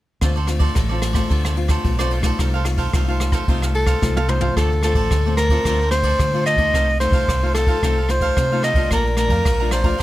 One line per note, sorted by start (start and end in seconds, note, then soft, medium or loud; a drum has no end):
0.21 0.68 D2 medium
0.21 0.74 D3 medium
0.21 0.38 A3 soft
0.21 0.38 C4 soft
0.21 0.34 F4 soft
0.21 0.39 F4 soft
0.21 0.35 A4 soft
0.21 0.35 C5 soft
0.21 0.35 D5 soft
0.21 kick medium
0.21 cross-stick medium
0.21 ride soft
0.36 0.47 A4 medium
0.36 0.47 C5 medium
0.36 0.48 D5 medium
0.47 0.74 A3 medium
0.47 0.74 C4 medium
0.47 0.74 F4 medium
0.47 muted cavaquinho stroke soft
0.47 cross-stick medium
0.47 ride soft
0.59 0.75 A4 medium
0.59 0.74 C5 medium
0.59 0.74 D5 medium
0.59 kick medium
0.59 ride soft
0.75 1.23 A1 medium
0.75 1.28 A2 soft
0.75 0.89 F4 soft
0.75 0.89 A4 soft
0.75 0.89 C5 medium
0.75 0.88 D5 soft
0.75 kick medium
0.75 cross-stick medium
0.75 ride soft
0.89 1.13 A3 medium
0.89 1.14 C4 soft
0.89 1.14 F4 medium
0.89 1.14 A4 medium
0.89 1.13 C5 medium
0.89 1.12 D5 medium
1.02 cross-stick medium
1.02 ride medium
1.13 1.53 A3 soft
1.13 1.53 C4 medium
1.13 1.53 F4 medium
1.13 1.29 A4 medium
1.13 1.28 C5 medium
1.13 1.28 D5 medium
1.13 kick medium
1.13 cross-stick medium
1.13 ride soft
1.30 1.77 D2 medium
1.30 1.82 D3 soft
1.30 1.43 F4 medium
1.30 1.43 A4 medium
1.30 1.43 C5 medium
1.30 1.42 D5 medium
1.30 kick medium
1.30 ride soft
1.43 1.56 A4 soft
1.43 1.56 C5 soft
1.43 1.56 D5 soft
1.43 cross-stick medium
1.56 1.93 A3 soft
1.56 1.94 C4 soft
1.56 1.94 F4 medium
1.56 muted cavaquinho stroke soft
1.56 ride soft
1.68 1.97 A4 soft
1.68 1.97 C5 medium
1.68 1.96 D5 medium
1.68 kick medium
1.68 cross-stick medium
1.68 ride soft
1.84 2.31 B1 medium
1.84 2.36 A2 medium
1.84 kick medium
1.84 ride soft
1.99 2.21 A3 medium
1.99 2.22 C4 medium
1.99 2.21 F4 medium
1.99 2.11 A4 medium
1.99 2.12 C5 medium
1.99 2.11 D5 medium
1.99 cross-stick medium
2.11 2.25 F4 soft
2.11 2.25 A4 soft
2.11 2.24 C5 soft
2.11 2.22 D5 soft
2.11 ride soft
2.22 2.60 A3 medium
2.22 2.61 D#4 medium
2.22 2.61 F4 medium
2.22 2.38 A4 medium
2.22 2.38 C5 medium
2.22 2.37 D5 medium
2.22 kick medium
2.22 cross-stick medium
2.22 ride soft
2.39 2.86 C2 medium
2.39 2.91 C3 medium
2.39 2.52 D#4 soft
2.39 2.52 A4 soft
2.39 2.53 C5 soft
2.39 2.53 F5 soft
2.39 kick medium
2.39 cross-stick medium
2.39 ride soft
2.54 2.65 A4 soft
2.54 2.65 C5 medium
2.54 2.65 F5 medium
2.64 2.88 A3 soft
2.64 2.88 D#4 medium
2.64 2.89 F4 medium
2.64 muted cavaquinho stroke soft
2.64 cross-stick medium
2.64 ride soft
2.78 2.92 A4 medium
2.78 2.92 C5 medium
2.78 2.91 F5 medium
2.78 kick medium
2.78 ride soft
2.93 3.40 C2 medium
2.93 3.45 C3 medium
2.93 3.02 A3 soft
2.93 3.02 D#4 soft
2.93 3.07 D#4 soft
2.93 3.02 F4 medium
2.93 3.07 A4 soft
2.93 3.08 C5 medium
2.93 3.07 F5 medium
2.93 kick medium
2.93 cross-stick medium
2.93 ride soft
3.07 3.44 A3 soft
3.07 3.44 D#4 soft
3.07 3.44 F4 medium
3.07 3.33 A4 soft
3.07 3.33 C5 medium
3.07 3.32 F5 medium
3.20 cross-stick medium
3.20 ride soft
3.32 3.47 A4 soft
3.32 3.47 C5 medium
3.32 3.46 F5 medium
3.32 kick medium
3.32 cross-stick medium
3.32 ride soft
3.48 3.94 C2 medium
3.48 4.00 C3 medium
3.48 3.98 A3 soft
3.48 3.98 D#4 soft
3.48 3.61 D#4 medium
3.48 3.98 F4 medium
3.48 3.61 A4 medium
3.48 3.62 C5 medium
3.48 3.62 F5 medium
3.48 kick medium
3.48 ride soft
3.62 3.74 A4 soft
3.62 3.75 C5 soft
3.62 3.74 F5 soft
3.62 cross-stick medium
3.74 4.31 A4 medium
3.74 muted cavaquinho stroke soft
3.74 ride soft
3.87 4.15 A4 medium
3.87 4.15 C5 medium
3.87 4.14 F5 medium
3.87 kick medium
3.87 cross-stick medium
3.87 ride soft
4.01 4.49 C2 medium
4.01 4.53 C3 medium
4.01 4.18 A3 medium
4.01 4.18 D#4 medium
4.01 4.18 F4 medium
4.01 kick medium
4.01 snare soft
4.17 4.29 A4 medium
4.17 4.30 C5 medium
4.17 4.29 F5 medium
4.17 high tom soft
4.28 4.38 A3 soft
4.28 4.38 D#4 soft
4.28 4.42 D#4 soft
4.28 4.38 F4 medium
4.28 4.42 A4 soft
4.28 4.57 C5 medium
4.28 4.41 C5 soft
4.28 4.40 F5 soft
4.28 mid tom medium
4.40 4.78 A3 medium
4.40 4.78 C4 medium
4.40 4.79 F4 medium
4.40 4.56 A4 soft
4.40 4.55 C5 medium
4.40 4.55 F5 medium
4.40 floor tom medium
4.57 4.91 D2 medium
4.57 5.08 D3 medium
4.57 4.69 F4 medium
4.57 4.82 A4 medium
4.57 4.70 A4 medium
4.57 4.70 C5 medium
4.57 4.70 D5 medium
4.57 kick medium
4.57 cross-stick medium
4.57 ride soft
4.72 muted cavaquinho stroke soft
4.83 5.09 A3 medium
4.83 5.09 C4 medium
4.83 4.96 F4 soft
4.83 5.10 F4 medium
4.83 5.34 A4 medium
4.83 4.96 A4 soft
4.83 4.95 C5 medium
4.83 4.94 D5 soft
4.83 cross-stick medium
4.83 ride soft
4.93 5.07 A1 medium
4.93 5.23 C5 medium
4.93 5.23 D5 medium
4.93 kick medium
4.93 ride soft
4.97 5.24 A4 medium
5.11 5.57 D2 medium
5.11 5.63 A2 soft
5.11 kick medium
5.11 cross-stick medium
5.11 ride soft
5.26 5.48 A3 medium
5.26 5.48 C4 medium
5.26 5.49 F4 medium
5.26 5.38 A4 soft
5.26 5.38 C5 soft
5.26 5.38 D5 soft
5.37 5.51 F4 soft
5.37 5.51 A4 soft
5.37 5.88 A#4 medium
5.37 5.51 C5 medium
5.37 cross-stick medium
5.37 ride soft
5.41 5.49 D5 medium
5.49 5.60 A3 medium
5.49 5.60 C4 medium
5.49 5.61 F4 medium
5.49 5.65 A4 soft
5.49 5.64 C5 medium
5.49 5.64 D5 medium
5.49 kick medium
5.49 ride soft
5.65 6.12 D2 medium
5.65 6.17 D3 soft
5.65 5.81 A3 medium
5.65 5.81 C4 soft
5.65 5.82 F4 medium
5.65 5.79 F4 medium
5.65 5.79 A4 medium
5.65 5.79 C5 medium
5.65 kick medium
5.65 cross-stick medium
5.65 ride soft
5.69 5.80 D5 medium
5.82 5.92 A4 soft
5.82 5.92 C5 soft
5.82 5.93 D5 soft
5.91 6.28 A3 medium
5.91 6.29 C4 medium
5.91 6.29 F4 medium
5.91 6.42 C5 loud
5.91 muted cavaquinho stroke soft
5.91 cross-stick medium
5.91 ride soft
6.03 6.32 A4 medium
6.03 6.32 C5 medium
6.03 6.31 D5 medium
6.03 kick medium
6.03 ride soft
6.19 6.71 A2 medium
6.19 6.54 D3 medium
6.19 kick medium
6.19 cross-stick medium
6.19 ride soft
6.33 6.56 A3 medium
6.33 6.56 C4 medium
6.33 6.57 F4 medium
6.33 6.45 A4 soft
6.33 6.46 C5 soft
6.33 6.46 D5 soft
6.46 6.59 F4 medium
6.46 6.59 A4 medium
6.46 6.59 C5 medium
6.46 6.58 D5 medium
6.46 6.97 D#5 loud
6.46 cross-stick medium
6.46 ride soft
6.56 6.69 D2 medium
6.56 6.96 A3 medium
6.56 6.96 D#4 medium
6.56 6.96 F4 medium
6.56 6.72 D5 soft
6.56 kick medium
6.56 ride soft
6.61 6.73 A4 soft
6.61 6.73 C5 soft
6.74 7.09 C2 medium
6.74 7.26 C3 soft
6.74 6.87 D#4 medium
6.74 6.87 A4 medium
6.74 6.87 C5 medium
6.74 6.88 F5 medium
6.74 kick medium
6.74 cross-stick medium
6.74 ride soft
6.90 muted cavaquinho stroke soft
7.00 7.26 A3 medium
7.00 7.26 D#4 medium
7.00 7.14 D#4 soft
7.00 7.27 F4 medium
7.00 7.14 A4 soft
7.00 7.51 C5 medium
7.00 7.13 C5 soft
7.00 7.12 F5 medium
7.00 cross-stick medium
7.00 ride soft
7.11 7.24 C2 medium
7.11 7.40 F5 medium
7.11 kick medium
7.11 ride soft
7.15 7.41 A4 medium
7.15 7.41 C5 medium
7.28 7.75 C2 medium
7.28 7.80 C3 soft
7.28 kick medium
7.28 cross-stick medium
7.28 ride soft
7.42 7.65 A3 medium
7.42 7.65 D#4 medium
7.42 7.65 F4 medium
7.42 7.55 C5 soft
7.42 7.55 F5 soft
7.46 7.54 A4 soft
7.54 7.68 D#4 soft
7.54 8.12 A4 medium
7.54 7.68 A4 medium
7.54 7.68 C5 medium
7.54 7.67 F5 medium
7.54 cross-stick medium
7.54 ride soft
7.67 7.77 A3 medium
7.67 7.78 D#4 medium
7.67 7.78 F4 medium
7.67 7.82 A4 medium
7.67 7.82 C5 medium
7.67 7.81 F5 medium
7.67 kick medium
7.67 ride soft
7.83 8.29 C2 medium
7.83 8.34 C3 soft
7.83 7.99 A3 soft
7.83 7.99 D#4 medium
7.83 7.96 D#4 medium
7.83 7.99 F4 medium
7.83 7.96 A4 medium
7.83 7.96 C5 medium
7.83 7.97 F5 medium
7.83 kick medium
7.83 cross-stick medium
7.83 ride soft
7.98 8.09 A4 soft
7.98 8.09 C5 soft
7.98 8.10 F5 soft
8.08 8.46 A3 soft
8.08 8.46 D#4 medium
8.08 8.46 F4 medium
8.08 8.63 C5 medium
8.08 muted cavaquinho stroke soft
8.08 cross-stick medium
8.08 ride soft
8.21 8.50 A4 soft
8.21 8.49 C5 medium
8.21 8.49 F5 medium
8.21 kick medium
8.21 ride soft
8.37 8.88 C3 medium
8.37 8.72 C3 medium
8.37 kick medium
8.37 cross-stick medium
8.37 ride soft
8.52 8.74 A3 medium
8.52 8.74 D#4 medium
8.52 8.75 F4 medium
8.52 8.64 A4 soft
8.52 8.64 C5 soft
8.52 8.64 F5 soft
8.63 8.77 D#4 medium
8.63 8.77 A4 medium
8.63 8.77 C5 medium
8.63 8.89 D#5 medium
8.63 8.76 F5 medium
8.63 cross-stick medium
8.63 ride soft
8.74 8.87 C2 medium
8.74 9.13 A3 medium
8.74 9.13 D4 medium
8.74 9.13 F4 medium
8.74 8.90 F5 soft
8.74 kick medium
8.74 ride soft
8.78 8.91 A4 soft
8.78 8.90 C5 soft
8.91 9.26 A#1 medium
8.91 9.43 A#2 soft
8.91 9.05 A4 medium
8.91 9.17 A#4 medium
8.91 9.05 D5 medium
8.91 9.05 F5 medium
8.91 9.05 A#5 medium
8.91 kick medium
8.91 cross-stick medium
8.91 ride soft
9.07 muted cavaquinho stroke soft
9.17 9.43 A3 medium
9.17 9.44 D4 medium
9.17 9.44 F4 medium
9.17 9.31 A4 soft
9.17 9.69 A#4 medium
9.17 9.31 D5 soft
9.17 9.30 F5 soft
9.17 9.29 A#5 medium
9.17 cross-stick medium
9.17 ride soft
9.28 9.41 F2 medium
9.28 9.58 F5 medium
9.28 9.57 A#5 medium
9.28 kick medium
9.28 ride soft
9.32 9.58 D5 medium
9.45 9.92 A#1 medium
9.45 9.97 F3 medium
9.45 kick medium
9.45 cross-stick medium
9.45 ride soft
9.60 9.83 A3 medium
9.60 9.83 D4 medium
9.60 9.83 F4 medium
9.60 9.72 D5 soft
9.60 9.72 F5 soft
9.60 9.72 A#5 soft
9.71 9.85 A4 soft
9.71 10.03 C5 medium
9.71 9.85 D5 medium
9.71 9.84 F5 medium
9.71 9.83 A#5 medium
9.71 cross-stick medium
9.71 ride soft
9.84 9.94 A3 medium
9.84 9.94 D4 medium
9.84 9.95 F4 medium
9.84 9.98 D5 medium
9.84 9.98 F5 soft
9.84 9.98 A#5 medium
9.84 kick medium
9.84 ride soft
9.98 10.03 A4 medium
9.98 10.03 D5 medium